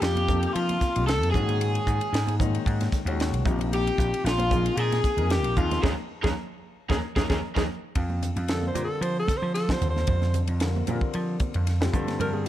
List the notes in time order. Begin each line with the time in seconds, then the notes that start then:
Already playing: C3 F3 A#3 D#4 G4
0.00 F2 G4, snare, ride
0.16 ride, high conga
0.28 C3 F3 A#3 D#4 A4, kick, hi-hat pedal, low conga
0.43 ride
0.53 F3 F4, ride
0.69 ride, high conga
0.81 muted slap bass stroke, kick, snare, hi-hat pedal
0.95 C2 C3 F3 A#3 D#4 G4, ride
1.07 A4, snare, ride
1.23 F2, ride
1.31 G#2 A#2 D#3 G#3 C#4 F#4 G#4, kick, hi-hat pedal
1.35 low conga
1.49 ride, high conga
1.61 ride
1.75 ride
1.87 G#2, kick, hi-hat pedal
2.01 ride
2.13 G#2, snare, ride
2.27 ride, high conga
2.39 A#2 D#3 G#3 C#4 D#4, kick, hi-hat pedal, low conga
2.55 ride
2.66 G#2, kick, ride
2.81 snare, ride, high conga
2.92 muted slap bass stroke, kick, snare, hi-hat pedal
3.05 D#2 A#2 D#3 G#3 C#4 F#4, ride
3.20 snare, ride
3.32 C2, ride
3.45 A#1 C3 F3 A#3 D#4 G4, kick, hi-hat pedal, low conga
3.59 ride, high conga
3.73 G4, ride
3.87 ride
3.98 A#1, kick, hi-hat pedal
4.14 ride
4.24 A#1 F4, snare, ride
4.38 ride, high conga
4.51 C3 F3 A#3 D#4 G#4, kick, hi-hat pedal, low conga
4.66 ride
4.77 A#2 G#4, ride
4.92 snare, ride, high conga
5.04 muted slap bass stroke, kick, snare, hi-hat pedal
5.17 F2 C3 F3 A#3 D#4 A#4, ride
5.30 G4, snare, ride
5.44 A#1, ride
5.56 D#2 C3 F3 A#3 D#4 F4 G#4, kick, hi-hat pedal, low conga
5.71 snare, ride, high conga
5.82 D#2 A#3 C#4 D#4 G#4 A#4, kick, snare, low conga
6.23 D#2 A#3 C#4 D#4 G#4 A#4, kick, snare, low conga
6.89 D#2 A#3 C#4 D#4 G#4 A#4, kick, snare, low conga
7.16 D#2 A#3 C#4 D#4 G#4 A#4, kick, snare, low conga
7.29 D#2 A#3 C#4 D#4 G#4 A#4, kick, snare, low conga
7.55 D#2 A#3 C#4 D#4 G#4 A#4, kick, snare, low conga
7.95 F2, kick, ride, low conga
8.10 high conga
8.23 hi-hat pedal, ride, low conga
8.36 F2, ride
8.48 D3 G3 C4 F4 A4 A#4, snare, ride
8.63 high conga
8.68 C5
8.74 A#2 D3 G3 C4 F4 A#4, hi-hat pedal, ride, low conga
8.84 A4
9.01 F3 C5, ride
9.20 A4
9.28 muted slap bass stroke, kick, snare, hi-hat pedal, ride, high conga
9.37 C5
9.42 F3
9.54 A4, snare, ride
9.68 D3 G3 C4 F4 A4 C5, kick, snare, high conga
9.81 D#2, hi-hat pedal, ride, low conga
9.90 C5
9.96 snare, high conga
10.07 F2, kick, ride, low conga
10.22 snare, high conga
10.34 hi-hat pedal, ride, low conga
10.47 F2, ride
10.60 D3 G3 C4 F4 A#4, snare, ride
10.76 high conga
10.87 A#2 D3 G3 C4 F4 A#4, hi-hat pedal, ride, low conga
11.01 kick
11.14 F3, ride
11.40 muted slap bass stroke, kick, hi-hat pedal, ride, high conga
11.54 F2, ride
11.67 snare, ride
11.81 D3 G3 C4 F4 G4, snare, high conga
11.92 G2 D3 G3 C4 F4 A4, kick, hi-hat pedal, ride, low conga
12.07 snare, ride, high conga
12.19 G2 A#4, ride, low conga
12.33 G#4, high conga